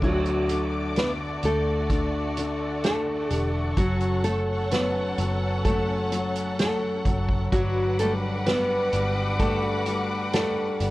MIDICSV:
0, 0, Header, 1, 7, 480
1, 0, Start_track
1, 0, Key_signature, 2, "major"
1, 0, Tempo, 937500
1, 11, Time_signature, 4, 2, 24, 8
1, 5583, End_track
2, 0, Start_track
2, 0, Title_t, "String section"
2, 0, Program_c, 0, 48
2, 9, Note_on_c, 0, 74, 68
2, 11, Note_on_c, 0, 78, 63
2, 11, Note_on_c, 0, 86, 78
2, 12, Note_on_c, 0, 69, 63
2, 962, Note_off_c, 0, 86, 0
2, 973, Note_on_c, 0, 85, 65
2, 1911, Note_off_c, 0, 74, 0
2, 1935, Note_on_c, 0, 73, 70
2, 3831, Note_off_c, 0, 69, 0
2, 3831, Note_off_c, 0, 78, 0
2, 3832, Note_off_c, 0, 85, 0
2, 3834, Note_off_c, 0, 73, 0
2, 3850, Note_on_c, 0, 66, 75
2, 3852, Note_on_c, 0, 78, 64
2, 3852, Note_on_c, 0, 83, 72
2, 3854, Note_on_c, 0, 86, 87
2, 5583, Note_off_c, 0, 66, 0
2, 5583, Note_off_c, 0, 78, 0
2, 5583, Note_off_c, 0, 83, 0
2, 5583, Note_off_c, 0, 86, 0
2, 5583, End_track
3, 0, Start_track
3, 0, Title_t, "Violin section"
3, 0, Program_c, 1, 48
3, 14, Note_on_c, 1, 66, 62
3, 15, Note_on_c, 1, 57, 69
3, 15, Note_on_c, 1, 74, 81
3, 1912, Note_off_c, 1, 66, 0
3, 1913, Note_off_c, 1, 57, 0
3, 1913, Note_off_c, 1, 74, 0
3, 1930, Note_on_c, 1, 78, 88
3, 1932, Note_on_c, 1, 69, 78
3, 1933, Note_on_c, 1, 61, 80
3, 3830, Note_off_c, 1, 78, 0
3, 3831, Note_off_c, 1, 69, 0
3, 3832, Note_off_c, 1, 61, 0
3, 3856, Note_on_c, 1, 62, 72
3, 3856, Note_on_c, 1, 71, 80
3, 3856, Note_on_c, 1, 78, 89
3, 5583, Note_off_c, 1, 62, 0
3, 5583, Note_off_c, 1, 71, 0
3, 5583, Note_off_c, 1, 78, 0
3, 5583, End_track
4, 0, Start_track
4, 0, Title_t, "Nylon-string guitar"
4, 0, Program_c, 2, 24
4, 18, Note_on_c, 2, 66, 74
4, 24, Note_on_c, 2, 54, 56
4, 477, Note_off_c, 2, 54, 0
4, 502, Note_on_c, 2, 71, 73
4, 507, Note_off_c, 2, 66, 0
4, 509, Note_on_c, 2, 59, 62
4, 565, Note_off_c, 2, 71, 0
4, 572, Note_off_c, 2, 59, 0
4, 743, Note_on_c, 2, 69, 79
4, 750, Note_on_c, 2, 57, 67
4, 1440, Note_off_c, 2, 57, 0
4, 1449, Note_off_c, 2, 69, 0
4, 1455, Note_on_c, 2, 69, 72
4, 1462, Note_on_c, 2, 57, 51
4, 1706, Note_off_c, 2, 69, 0
4, 1706, Note_on_c, 2, 67, 72
4, 1793, Note_off_c, 2, 67, 0
4, 1796, Note_off_c, 2, 57, 0
4, 1937, Note_on_c, 2, 66, 81
4, 1946, Note_on_c, 2, 54, 59
4, 2162, Note_off_c, 2, 54, 0
4, 2170, Note_off_c, 2, 66, 0
4, 2172, Note_on_c, 2, 69, 82
4, 2181, Note_on_c, 2, 57, 53
4, 2395, Note_off_c, 2, 69, 0
4, 2400, Note_off_c, 2, 57, 0
4, 2417, Note_on_c, 2, 71, 85
4, 2425, Note_on_c, 2, 59, 58
4, 2878, Note_off_c, 2, 59, 0
4, 2890, Note_off_c, 2, 71, 0
4, 2892, Note_on_c, 2, 69, 83
4, 2904, Note_on_c, 2, 57, 72
4, 3351, Note_off_c, 2, 69, 0
4, 3357, Note_off_c, 2, 57, 0
4, 3375, Note_on_c, 2, 69, 79
4, 3382, Note_on_c, 2, 57, 61
4, 3713, Note_off_c, 2, 69, 0
4, 3716, Note_off_c, 2, 57, 0
4, 3852, Note_on_c, 2, 66, 86
4, 3862, Note_on_c, 2, 54, 72
4, 4080, Note_off_c, 2, 54, 0
4, 4092, Note_off_c, 2, 66, 0
4, 4094, Note_on_c, 2, 69, 80
4, 4104, Note_on_c, 2, 57, 64
4, 4158, Note_off_c, 2, 69, 0
4, 4167, Note_off_c, 2, 57, 0
4, 4335, Note_on_c, 2, 71, 88
4, 4344, Note_on_c, 2, 59, 70
4, 4797, Note_off_c, 2, 59, 0
4, 4809, Note_off_c, 2, 71, 0
4, 4811, Note_on_c, 2, 69, 83
4, 4824, Note_on_c, 2, 57, 59
4, 5277, Note_off_c, 2, 57, 0
4, 5287, Note_off_c, 2, 69, 0
4, 5293, Note_on_c, 2, 69, 79
4, 5304, Note_on_c, 2, 57, 72
4, 5583, Note_off_c, 2, 57, 0
4, 5583, Note_off_c, 2, 69, 0
4, 5583, End_track
5, 0, Start_track
5, 0, Title_t, "Grand piano"
5, 0, Program_c, 3, 0
5, 0, Control_c, 3, 64, 127
5, 13, Note_on_c, 3, 50, 68
5, 18, Control_c, 3, 64, 0
5, 101, Control_c, 3, 64, 127
5, 248, Note_off_c, 3, 50, 0
5, 256, Note_on_c, 3, 50, 47
5, 489, Note_off_c, 3, 50, 0
5, 497, Note_on_c, 3, 50, 52
5, 727, Note_off_c, 3, 50, 0
5, 734, Note_on_c, 3, 50, 48
5, 967, Note_off_c, 3, 50, 0
5, 974, Note_on_c, 3, 50, 56
5, 1208, Note_off_c, 3, 50, 0
5, 1216, Note_on_c, 3, 50, 57
5, 1447, Note_off_c, 3, 50, 0
5, 1455, Note_on_c, 3, 50, 51
5, 1691, Note_off_c, 3, 50, 0
5, 1699, Note_on_c, 3, 50, 45
5, 1928, Note_off_c, 3, 50, 0
5, 1931, Note_on_c, 3, 54, 67
5, 1937, Control_c, 3, 64, 0
5, 2019, Control_c, 3, 64, 127
5, 2165, Note_off_c, 3, 54, 0
5, 2172, Note_on_c, 3, 54, 48
5, 2406, Note_off_c, 3, 54, 0
5, 2413, Note_on_c, 3, 54, 50
5, 2645, Note_off_c, 3, 54, 0
5, 2653, Note_on_c, 3, 54, 51
5, 2887, Note_off_c, 3, 54, 0
5, 2894, Note_on_c, 3, 54, 55
5, 3125, Note_off_c, 3, 54, 0
5, 3132, Note_on_c, 3, 54, 59
5, 3368, Note_off_c, 3, 54, 0
5, 3376, Note_on_c, 3, 54, 50
5, 3606, Note_off_c, 3, 54, 0
5, 3613, Note_on_c, 3, 54, 51
5, 3845, Note_off_c, 3, 54, 0
5, 3853, Note_on_c, 3, 54, 68
5, 3858, Control_c, 3, 64, 0
5, 3943, Control_c, 3, 64, 127
5, 4093, Note_on_c, 3, 55, 51
5, 4323, Note_off_c, 3, 55, 0
5, 4330, Note_on_c, 3, 55, 53
5, 4567, Note_off_c, 3, 55, 0
5, 4574, Note_on_c, 3, 55, 52
5, 4806, Note_off_c, 3, 55, 0
5, 4814, Note_on_c, 3, 55, 57
5, 5046, Note_off_c, 3, 55, 0
5, 5053, Note_on_c, 3, 55, 53
5, 5287, Note_off_c, 3, 55, 0
5, 5295, Note_on_c, 3, 55, 55
5, 5524, Note_off_c, 3, 55, 0
5, 5532, Note_on_c, 3, 55, 48
5, 5583, Note_off_c, 3, 54, 0
5, 5583, Note_off_c, 3, 55, 0
5, 5583, End_track
6, 0, Start_track
6, 0, Title_t, "Fingered electric bass"
6, 0, Program_c, 4, 33
6, 11, Note_on_c, 4, 38, 87
6, 711, Note_off_c, 4, 38, 0
6, 734, Note_on_c, 4, 38, 74
6, 1672, Note_off_c, 4, 38, 0
6, 1693, Note_on_c, 4, 28, 90
6, 1915, Note_off_c, 4, 28, 0
6, 1932, Note_on_c, 4, 30, 109
6, 2631, Note_off_c, 4, 30, 0
6, 2652, Note_on_c, 4, 30, 76
6, 3591, Note_off_c, 4, 30, 0
6, 3612, Note_on_c, 4, 30, 100
6, 3835, Note_off_c, 4, 30, 0
6, 3852, Note_on_c, 4, 31, 84
6, 4551, Note_off_c, 4, 31, 0
6, 4571, Note_on_c, 4, 31, 71
6, 5511, Note_off_c, 4, 31, 0
6, 5532, Note_on_c, 4, 31, 88
6, 5583, Note_off_c, 4, 31, 0
6, 5583, End_track
7, 0, Start_track
7, 0, Title_t, "Drums"
7, 10, Note_on_c, 9, 49, 82
7, 11, Note_on_c, 9, 36, 79
7, 61, Note_off_c, 9, 49, 0
7, 62, Note_off_c, 9, 36, 0
7, 131, Note_on_c, 9, 42, 40
7, 182, Note_off_c, 9, 42, 0
7, 251, Note_on_c, 9, 42, 71
7, 302, Note_off_c, 9, 42, 0
7, 492, Note_on_c, 9, 42, 73
7, 498, Note_on_c, 9, 38, 91
7, 543, Note_off_c, 9, 42, 0
7, 550, Note_off_c, 9, 38, 0
7, 731, Note_on_c, 9, 42, 71
7, 782, Note_off_c, 9, 42, 0
7, 971, Note_on_c, 9, 36, 91
7, 971, Note_on_c, 9, 42, 72
7, 1022, Note_off_c, 9, 36, 0
7, 1022, Note_off_c, 9, 42, 0
7, 1212, Note_on_c, 9, 42, 73
7, 1263, Note_off_c, 9, 42, 0
7, 1451, Note_on_c, 9, 42, 85
7, 1456, Note_on_c, 9, 38, 103
7, 1503, Note_off_c, 9, 42, 0
7, 1507, Note_off_c, 9, 38, 0
7, 1691, Note_on_c, 9, 42, 72
7, 1743, Note_off_c, 9, 42, 0
7, 1931, Note_on_c, 9, 42, 83
7, 1932, Note_on_c, 9, 36, 84
7, 1982, Note_off_c, 9, 42, 0
7, 1983, Note_off_c, 9, 36, 0
7, 2052, Note_on_c, 9, 42, 46
7, 2103, Note_off_c, 9, 42, 0
7, 2171, Note_on_c, 9, 42, 66
7, 2222, Note_off_c, 9, 42, 0
7, 2413, Note_on_c, 9, 42, 76
7, 2419, Note_on_c, 9, 38, 88
7, 2464, Note_off_c, 9, 42, 0
7, 2470, Note_off_c, 9, 38, 0
7, 2652, Note_on_c, 9, 42, 74
7, 2703, Note_off_c, 9, 42, 0
7, 2892, Note_on_c, 9, 36, 90
7, 2894, Note_on_c, 9, 42, 80
7, 2943, Note_off_c, 9, 36, 0
7, 2945, Note_off_c, 9, 42, 0
7, 3133, Note_on_c, 9, 42, 74
7, 3184, Note_off_c, 9, 42, 0
7, 3253, Note_on_c, 9, 42, 57
7, 3304, Note_off_c, 9, 42, 0
7, 3373, Note_on_c, 9, 42, 91
7, 3378, Note_on_c, 9, 38, 96
7, 3425, Note_off_c, 9, 42, 0
7, 3429, Note_off_c, 9, 38, 0
7, 3611, Note_on_c, 9, 36, 84
7, 3612, Note_on_c, 9, 42, 75
7, 3662, Note_off_c, 9, 36, 0
7, 3663, Note_off_c, 9, 42, 0
7, 3731, Note_on_c, 9, 36, 74
7, 3782, Note_off_c, 9, 36, 0
7, 3852, Note_on_c, 9, 36, 91
7, 3852, Note_on_c, 9, 42, 75
7, 3903, Note_off_c, 9, 36, 0
7, 3903, Note_off_c, 9, 42, 0
7, 4090, Note_on_c, 9, 42, 69
7, 4142, Note_off_c, 9, 42, 0
7, 4333, Note_on_c, 9, 42, 76
7, 4340, Note_on_c, 9, 38, 93
7, 4384, Note_off_c, 9, 42, 0
7, 4391, Note_off_c, 9, 38, 0
7, 4569, Note_on_c, 9, 42, 72
7, 4620, Note_off_c, 9, 42, 0
7, 4811, Note_on_c, 9, 36, 94
7, 4811, Note_on_c, 9, 42, 71
7, 4862, Note_off_c, 9, 36, 0
7, 4862, Note_off_c, 9, 42, 0
7, 5049, Note_on_c, 9, 42, 78
7, 5100, Note_off_c, 9, 42, 0
7, 5291, Note_on_c, 9, 42, 94
7, 5295, Note_on_c, 9, 38, 113
7, 5342, Note_off_c, 9, 42, 0
7, 5347, Note_off_c, 9, 38, 0
7, 5531, Note_on_c, 9, 42, 73
7, 5582, Note_off_c, 9, 42, 0
7, 5583, End_track
0, 0, End_of_file